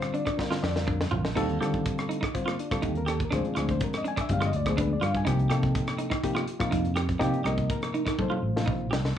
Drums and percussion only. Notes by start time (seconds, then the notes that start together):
0.02 cross-stick, closed hi-hat
0.14 closed hi-hat
0.26 kick, cross-stick, closed hi-hat
0.39 kick, snare
0.52 snare
0.64 snare
0.76 snare
0.88 kick
1.01 snare
1.11 floor tom
1.25 snare
1.37 kick, cross-stick, closed hi-hat, splash
1.49 closed hi-hat
1.62 cross-stick, closed hi-hat
1.74 kick
1.86 kick, closed hi-hat
1.98 cross-stick, closed hi-hat
2.11 closed hi-hat
2.23 kick, cross-stick
2.35 kick, closed hi-hat
2.48 cross-stick
2.59 closed hi-hat
2.71 kick, cross-stick, closed hi-hat
2.83 kick, closed hi-hat
2.95 closed hi-hat
3.08 cross-stick, closed hi-hat
3.20 kick, closed hi-hat
3.32 kick, cross-stick, closed hi-hat
3.45 closed hi-hat
3.56 cross-stick, closed hi-hat
3.68 kick, closed hi-hat
3.81 kick, closed hi-hat
3.93 cross-stick, closed hi-hat
4.05 closed hi-hat
4.17 kick, cross-stick, closed hi-hat
4.29 kick, closed hi-hat
4.41 cross-stick, closed hi-hat
4.53 closed hi-hat
4.66 kick, cross-stick, closed hi-hat
4.78 kick, closed hi-hat
5.02 cross-stick, closed hi-hat
5.14 kick, closed hi-hat
5.27 kick, cross-stick, closed hi-hat
5.39 closed hi-hat
5.50 cross-stick, closed hi-hat
5.63 kick
5.75 kick, closed hi-hat
5.87 cross-stick, closed hi-hat
5.99 closed hi-hat
6.11 kick, cross-stick
6.24 kick, closed hi-hat
6.37 cross-stick
6.48 closed hi-hat
6.60 kick, cross-stick, closed hi-hat
6.72 kick, closed hi-hat
6.85 closed hi-hat
6.96 cross-stick, closed hi-hat
7.09 kick, closed hi-hat
7.21 kick, cross-stick, closed hi-hat
7.34 closed hi-hat
7.45 cross-stick, closed hi-hat
7.58 kick, closed hi-hat
7.70 kick, closed hi-hat
7.82 cross-stick, closed hi-hat
7.95 closed hi-hat
8.07 kick, cross-stick, closed hi-hat
8.19 kick, high tom
8.32 high tom
8.57 snare
8.68 kick, mid tom
8.93 snare
9.05 snare